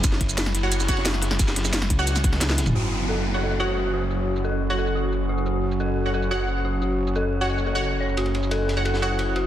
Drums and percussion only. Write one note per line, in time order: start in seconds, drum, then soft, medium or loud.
0.04 kick loud
0.04 closed hi-hat medium
0.04 ride medium
0.04 ride bell medium
0.04 shaker medium
0.12 snare soft
0.12 ride medium
0.21 kick medium
0.21 closed hi-hat loud
0.21 ride medium
0.29 shaker medium
0.37 snare loud
0.37 closed hi-hat medium
0.37 ride medium
0.37 ride bell medium
0.37 shaker medium
0.46 snare medium
0.55 snare soft
0.55 closed hi-hat loud
0.55 ride medium
0.63 ride soft
0.72 closed hi-hat medium
0.72 ride medium
0.72 ride bell medium
0.72 shaker medium
0.80 snare medium
0.80 shaker medium
0.88 kick loud
0.88 snare loud
0.88 closed hi-hat loud
0.88 ride medium
0.88 shaker soft
0.97 snare loud
0.97 ride medium
1.05 snare loud
1.05 closed hi-hat medium
1.05 ride medium
1.05 ride bell medium
1.05 shaker medium
1.14 snare soft
1.21 snare loud
1.21 closed hi-hat loud
1.21 ride medium
1.31 snare loud
1.31 snare soft
1.31 ride medium
1.39 kick loud
1.39 snare loud
1.39 closed hi-hat medium
1.39 ride medium
1.39 ride bell medium
1.39 shaker medium
1.48 snare soft
1.48 snare loud
1.48 ride medium
1.48 shaker soft
1.56 snare loud
1.56 closed hi-hat loud
1.56 ride medium
1.65 snare loud
1.65 ride medium
1.65 shaker medium
1.73 snare loud
1.73 closed hi-hat medium
1.73 ride medium
1.73 ride bell medium
1.73 shaker medium
1.82 snare medium
1.90 kick medium
1.90 closed hi-hat loud
1.90 ride medium
2.07 closed hi-hat medium
2.07 ride loud
2.07 ride bell medium
2.07 shaker medium
2.16 snare soft
2.16 shaker medium
2.24 kick loud
2.24 closed hi-hat loud
2.24 ride medium
2.24 shaker soft
2.33 snare medium
2.33 snare soft
2.41 snare loud
2.41 snare medium
2.41 closed hi-hat medium
2.41 ride medium
2.41 ride bell medium
2.41 shaker medium
2.49 snare medium
2.49 ride soft
2.58 snare loud
2.58 closed hi-hat loud
2.58 ride medium
2.58 shaker soft
2.66 mid tom medium
2.66 ride medium
2.66 shaker soft
2.75 shaker medium
3.00 shaker medium
3.09 shaker soft
3.43 shaker soft
3.51 shaker medium
3.77 shaker soft
4.11 shaker soft
4.36 shaker medium
4.45 shaker soft
4.78 shaker soft
4.87 shaker medium
4.95 shaker soft
5.12 shaker soft
5.38 shaker soft
5.46 shaker soft
5.72 shaker medium
5.80 shaker soft
6.14 shaker soft
6.22 shaker medium
6.31 shaker soft
6.48 shaker soft
6.82 shaker soft
7.07 shaker medium
7.16 shaker soft
7.50 shaker soft
7.58 shaker medium
7.66 shaker soft
7.83 shaker soft
8.09 shaker soft
8.17 ride medium
8.17 shaker soft
8.26 ride soft
8.35 ride medium
8.43 shaker medium
8.51 ride medium
8.51 shaker soft
8.68 snare soft
8.68 ride medium
8.77 ride soft
8.85 ride medium
8.85 shaker soft
8.94 snare medium
8.94 shaker medium
9.02 ride medium
9.02 shaker soft
9.19 ride medium
9.19 shaker soft
9.36 ride medium